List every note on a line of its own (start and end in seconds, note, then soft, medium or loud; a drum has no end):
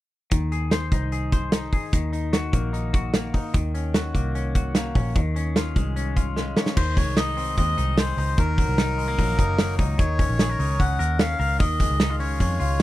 0.31 0.89 D#2 medium
0.31 1.93 D#3 medium
0.31 kick loud
0.31 closed hi-hat medium
0.52 1.11 G#4 medium
0.52 closed hi-hat medium
0.71 1.31 C5 medium
0.71 snare medium
0.71 closed hi-hat medium
0.92 1.69 C2 medium
0.92 1.53 D#4 medium
0.92 kick medium
0.92 closed hi-hat medium
1.12 1.72 G#4 medium
1.12 closed hi-hat medium
1.32 1.97 C5 medium
1.32 kick medium
1.32 closed hi-hat medium
1.52 2.12 D#4 medium
1.52 snare loud
1.52 closed hi-hat medium
1.73 1.97 G#4 medium
1.73 kick medium
1.73 open hi-hat medium
1.93 2.51 D#2 loud
1.93 3.53 D#3 medium
1.93 kick loud
1.93 closed hi-hat medium
2.13 2.73 D#4 medium
2.13 closed hi-hat medium
2.33 2.93 F#4 medium
2.33 snare medium
2.33 closed hi-hat medium
2.53 3.30 A#1 medium
2.53 3.13 A#3 medium
2.53 kick medium
2.53 closed hi-hat medium
2.73 3.33 D#4 medium
2.73 closed hi-hat medium
2.93 3.58 F#4 medium
2.93 kick medium
2.93 closed hi-hat medium
3.13 3.58 A#3 medium
3.13 snare loud
3.13 closed hi-hat medium
3.34 3.74 D#4 medium
3.34 kick medium
3.34 open hi-hat medium
3.54 4.12 D#2 loud
3.54 5.15 D#3 medium
3.54 kick loud
3.54 closed hi-hat medium
3.74 4.35 C#4 medium
3.74 closed hi-hat medium
3.94 4.54 F#4 medium
3.94 snare loud
3.94 closed hi-hat medium
4.14 4.91 C2 medium
4.14 4.75 A#3 medium
4.14 kick medium
4.14 closed hi-hat medium
4.35 4.94 C#4 medium
4.35 closed hi-hat medium
4.55 5.20 F#4 medium
4.55 kick medium
4.55 closed hi-hat medium
4.75 5.20 A#3 medium
4.75 snare loud
4.75 closed hi-hat medium
4.95 5.13 A#1 medium
4.95 5.20 C#4 medium
4.95 kick medium
4.95 open hi-hat medium
5.16 5.73 D#2 loud
5.16 6.77 D#3 medium
5.16 kick loud
5.16 closed hi-hat medium
5.36 5.95 C#4 medium
5.36 closed hi-hat medium
5.56 6.15 F4 medium
5.56 snare medium
5.56 closed hi-hat medium
5.76 6.53 C2 medium
5.76 6.36 G#3 medium
5.76 kick medium
5.76 closed hi-hat medium
5.96 6.55 C#4 medium
5.96 closed hi-hat medium
6.16 6.81 F4 medium
6.16 kick medium
6.16 closed hi-hat medium
6.36 6.81 G#3 medium
6.36 snare medium
6.57 6.81 C#4 medium
6.57 snare medium
6.66 snare medium
6.76 7.07 D#2 loud
6.76 8.38 D#3 medium
6.76 6.98 C5 loud
6.76 kick loud
6.76 crash loud
6.97 7.56 G#3 medium
6.97 7.18 C#5 medium
6.97 kick loud
6.97 hi-hat pedal medium
6.97 open hi-hat medium
7.07 7.55 C2 loud
7.17 7.77 D#4 medium
7.17 7.56 D#5 medium
7.17 snare medium
7.17 hi-hat pedal medium
7.17 open hi-hat medium
7.37 8.42 C4 medium
7.37 hi-hat pedal medium
7.37 open hi-hat medium
7.57 7.75 D#2 loud
7.57 7.96 G#3 medium
7.57 7.99 D#5 loud
7.57 kick medium
7.57 hi-hat pedal medium
7.57 open hi-hat medium
7.78 8.12 C2 medium
7.78 8.18 D#4 medium
7.78 hi-hat pedal medium
7.78 open hi-hat medium
7.98 8.42 G#3 medium
7.98 8.40 C5 medium
7.98 snare loud
7.98 hi-hat pedal medium
7.98 open hi-hat loud
8.17 8.35 C#2 medium
8.17 8.78 D#4 medium
8.17 hi-hat pedal medium
8.17 open hi-hat medium
8.38 8.64 D#2 loud
8.38 9.98 D#3 medium
8.38 9.75 A#4 loud
8.38 kick loud
8.38 hi-hat pedal medium
8.38 open hi-hat loud
8.58 9.17 F#3 medium
8.58 kick loud
8.58 hi-hat pedal medium
8.58 open hi-hat medium
8.68 9.16 C2 medium
8.78 9.38 D#4 medium
8.78 snare loud
8.78 hi-hat pedal medium
8.78 open hi-hat medium
8.98 9.08 G#3 medium
8.98 hi-hat pedal medium
8.98 open hi-hat medium
9.08 10.03 A#3 medium
9.18 9.36 A#1 loud
9.18 9.58 F#3 medium
9.18 kick medium
9.18 hi-hat pedal medium
9.18 open hi-hat medium
9.38 9.80 F#1 medium
9.38 9.78 D#4 medium
9.38 kick medium
9.38 hi-hat pedal medium
9.38 open hi-hat medium
9.58 10.03 F#3 medium
9.58 snare loud
9.58 hi-hat pedal medium
9.58 open hi-hat loud
9.79 9.96 C#2 medium
9.79 10.22 D#4 medium
9.79 kick medium
9.79 hi-hat pedal medium
9.79 open hi-hat medium
9.98 10.25 D#2 loud
9.98 11.59 D#3 medium
9.98 10.82 C#5 loud
9.98 kick loud
9.98 hi-hat pedal medium
9.98 open hi-hat loud
10.19 10.79 C#4 medium
10.19 kick medium
10.19 hi-hat pedal medium
10.19 open hi-hat medium
10.29 10.55 A#1 medium
10.39 10.49 G#4 medium
10.39 snare loud
10.39 hi-hat pedal medium
10.39 open hi-hat medium
10.49 10.98 A#4 medium
10.59 10.76 C#2 loud
10.59 12.00 D#4 medium
10.59 hi-hat pedal medium
10.59 open hi-hat medium
10.79 10.97 C#2 loud
10.79 11.19 C#4 medium
10.79 11.21 F#5 loud
10.79 kick medium
10.79 hi-hat pedal medium
10.79 open hi-hat medium
10.99 11.34 D#2 medium
10.99 11.38 A#4 medium
10.99 hi-hat pedal medium
10.99 open hi-hat medium
11.19 11.64 C#4 medium
11.19 11.57 F5 loud
11.19 snare loud
11.19 hi-hat pedal medium
11.19 open hi-hat medium
11.39 11.57 C#2 medium
11.39 11.64 A#4 medium
11.39 hi-hat pedal medium
11.39 open hi-hat medium
11.59 11.86 D#2 loud
11.59 12.82 D#3 medium
11.59 12.16 D#5 loud
11.59 kick loud
11.59 hi-hat pedal medium
11.59 open hi-hat loud
11.80 12.40 G#3 medium
11.80 kick medium
11.80 hi-hat pedal medium
11.80 open hi-hat medium
11.90 12.38 C#2 medium
12.00 12.10 D#4 medium
12.00 snare loud
12.00 hi-hat pedal medium
12.00 open hi-hat medium
12.10 12.58 F4 medium
12.19 12.82 C#4 medium
12.19 12.39 C#5 loud
12.19 hi-hat pedal medium
12.19 open hi-hat medium
12.40 12.57 F2 loud
12.40 12.80 G#3 medium
12.40 12.82 C#5 medium
12.40 kick medium
12.40 hi-hat pedal medium
12.40 open hi-hat medium
12.60 12.82 C#2 loud
12.60 12.82 F4 medium
12.60 hi-hat pedal medium
12.60 open hi-hat medium